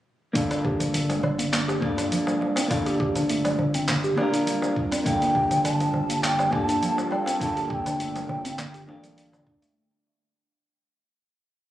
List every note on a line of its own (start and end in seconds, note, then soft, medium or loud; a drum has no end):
0.33 1.17 G1 medium
0.33 0.50 G3 loud
0.33 1.78 A#3 medium
0.33 1.79 D4 medium
0.33 1.79 F4 medium
0.33 kick loud
0.33 open hi-hat medium
0.33 shaker medium
0.37 1.80 A4 loud
0.51 0.64 A#3 medium
0.51 open hi-hat soft
0.51 darbuka ka soft
0.51 low woodblock medium
0.51 shaker soft
0.65 0.79 G4 medium
0.65 kick medium
0.65 darbuka ka soft
0.80 0.93 G3 medium
0.80 open hi-hat soft
0.80 darbuka dum medium
0.80 shaker medium
0.94 1.08 D3 loud
0.94 open hi-hat medium
0.94 shaker medium
1.10 1.22 G3 medium
1.10 open hi-hat soft
1.10 darbuka tek medium
1.10 shaker soft
1.23 1.76 G1 medium
1.23 1.38 G3 medium
1.23 darbuka dum medium
1.23 low woodblock medium
1.39 1.51 A#3 medium
1.39 open hi-hat soft
1.39 shaker medium
1.52 1.67 A#3 loud
1.52 clap medium
1.52 open hi-hat medium
1.52 darbuka ka medium
1.52 shaker medium
1.68 1.76 G4 medium
1.68 darbuka tek medium
1.68 shaker soft
1.80 2.04 G2 medium
1.80 2.66 A#3 medium
1.80 2.67 D4 medium
1.80 2.68 F4 medium
1.80 1.96 G4 medium
1.80 2.68 A4 medium
1.80 kick loud
1.80 darbuka ka medium
1.98 2.10 D4 medium
1.98 open hi-hat soft
1.98 darbuka tek soft
1.98 low woodblock medium
1.98 shaker medium
2.12 2.27 F3 medium
2.12 open hi-hat medium
2.12 shaker medium
2.27 2.40 G3 medium
2.27 darbuka tek medium
2.27 shaker soft
2.41 2.56 G3 medium
2.41 darbuka ka medium
2.56 2.69 C4 medium
2.56 open hi-hat soft
2.56 darbuka tek medium
2.56 shaker medium
2.68 3.53 G1 medium
2.68 4.13 A#3 medium
2.68 2.85 A#3 medium
2.68 4.14 D4 medium
2.68 4.14 F4 medium
2.68 kick loud
2.68 open hi-hat medium
2.68 low woodblock medium
2.68 shaker medium
2.72 4.15 A4 medium
2.86 2.94 G4 medium
2.86 open hi-hat soft
2.86 darbuka ka soft
2.86 shaker soft
3.00 3.14 G4 medium
3.00 kick loud
3.00 darbuka ka soft
3.16 3.28 D4 medium
3.16 open hi-hat soft
3.16 darbuka dum medium
3.16 shaker medium
3.29 3.44 A3 medium
3.29 open hi-hat medium
3.29 shaker medium
3.45 3.58 G3 medium
3.45 open hi-hat soft
3.45 darbuka tek medium
3.45 low woodblock medium
3.45 shaker soft
3.59 4.11 G1 medium
3.59 3.74 G3 medium
3.59 darbuka dum medium
3.74 3.87 C4 loud
3.74 open hi-hat soft
3.74 shaker medium
3.88 4.03 A#3 medium
3.88 clap medium
3.88 open hi-hat medium
3.88 darbuka dum medium
3.88 shaker medium
4.04 4.12 G4 medium
4.04 shaker soft
4.16 5.02 A#3 medium
4.16 5.02 D4 medium
4.16 5.03 F4 medium
4.16 4.32 G4 medium
4.16 5.04 A#4 loud
4.16 darbuka tek medium
4.16 low woodblock medium
4.33 4.45 D4 medium
4.33 open hi-hat soft
4.33 shaker medium
4.47 4.61 G3 medium
4.47 open hi-hat medium
4.47 shaker medium
4.62 4.75 G3 medium
4.62 darbuka tek medium
4.62 shaker soft
4.76 4.91 G3 medium
4.76 kick loud
4.92 5.04 C4 loud
4.92 open hi-hat soft
4.92 low woodblock medium
4.92 shaker medium
5.04 5.88 G1 medium
5.04 9.76 G3 medium
5.04 5.21 G3 medium
5.04 6.49 A#3 medium
5.04 6.49 D4 medium
5.04 6.50 F4 medium
5.04 6.51 A4 loud
5.04 5.60 G5 loud
5.04 kick loud
5.04 open hi-hat medium
5.04 shaker medium
5.21 5.34 A#3 medium
5.21 open hi-hat soft
5.21 darbuka ka soft
5.21 shaker soft
5.33 9.77 F4 medium
5.33 5.49 G4 medium
5.33 kick loud
5.33 darbuka ka soft
5.51 5.63 G3 medium
5.51 open hi-hat soft
5.51 darbuka dum medium
5.51 shaker medium
5.64 5.79 D3 loud
5.64 6.24 A5 loud
5.64 open hi-hat medium
5.64 low woodblock medium
5.64 shaker medium
5.80 5.93 G3 medium
5.80 open hi-hat soft
5.80 darbuka tek medium
5.80 shaker soft
5.90 9.76 A4 medium
5.90 darbuka dum medium
5.94 6.47 G1 medium
5.94 6.09 G3 medium
5.94 9.77 A#3 medium
6.09 6.22 A#3 medium
6.09 open hi-hat soft
6.09 shaker medium
6.22 6.38 A#3 medium
6.22 6.54 G5 loud
6.22 clap medium
6.22 open hi-hat medium
6.22 darbuka ka medium
6.22 shaker medium
6.39 6.47 G4 medium
6.39 darbuka tek medium
6.39 low woodblock medium
6.39 shaker soft
6.51 6.74 G2 medium
6.51 7.37 A#3 medium
6.51 7.37 D4 medium
6.51 7.38 F4 medium
6.51 6.67 G4 medium
6.51 7.39 A4 medium
6.51 7.10 A5 loud
6.51 kick loud
6.51 darbuka ka medium
6.68 6.81 D4 medium
6.68 open hi-hat soft
6.68 darbuka tek soft
6.68 shaker medium
6.82 6.97 F3 medium
6.82 open hi-hat medium
6.82 shaker medium
6.98 7.10 G3 medium
6.98 darbuka tek medium
6.98 shaker soft
7.11 7.26 G3 medium
7.11 7.38 G5 medium
7.11 darbuka ka medium
7.11 low woodblock medium
7.26 7.40 C4 loud
7.26 open hi-hat soft
7.26 darbuka tek medium
7.26 shaker medium
7.40 8.23 G1 loud
7.40 8.84 A#3 medium
7.40 7.56 A#3 loud
7.40 8.85 D4 medium
7.40 8.85 F4 medium
7.40 7.72 A5 loud
7.40 kick loud
7.40 open hi-hat medium
7.40 shaker medium
7.44 8.86 A4 loud
7.56 7.64 G4 medium
7.56 open hi-hat soft
7.56 darbuka ka medium
7.56 shaker soft
7.70 7.84 G4 medium
7.70 9.47 G5 loud
7.70 kick loud
7.70 darbuka ka medium
7.86 7.98 D4 medium
7.86 open hi-hat soft
7.86 darbuka dum medium
7.86 low woodblock medium
7.86 shaker medium
8.00 8.15 A3 medium
8.00 open hi-hat soft
8.00 shaker medium
8.15 8.28 G3 medium
8.15 open hi-hat soft
8.15 darbuka tek medium
8.15 shaker soft
8.29 8.89 G1 medium
8.29 8.44 G3 medium
8.29 darbuka dum medium
8.45 8.57 C4 loud
8.45 open hi-hat soft
8.45 shaker medium
8.58 8.73 A#3 loud
8.58 clap medium
8.58 open hi-hat medium
8.58 darbuka dum medium
8.58 low woodblock medium
8.58 shaker medium
8.74 8.82 G4 medium
8.74 open hi-hat soft
8.74 shaker soft
8.86 9.41 A1 medium
8.86 9.72 A#3 medium
8.86 9.73 D4 medium
8.86 9.03 D4 medium
8.86 9.73 F4 medium
8.86 9.74 A4 medium
8.86 darbuka tek medium
9.03 9.16 G3 loud
9.03 open hi-hat soft
9.03 darbuka tek soft
9.03 shaker medium
9.17 9.32 G3 medium
9.17 open hi-hat soft
9.17 shaker medium
9.33 9.46 D3 medium
9.33 darbuka tek medium
9.33 low woodblock medium
9.33 shaker soft
9.47 9.62 D4 loud
9.47 kick loud
9.62 9.75 A3 loud
9.62 open hi-hat soft
9.62 shaker medium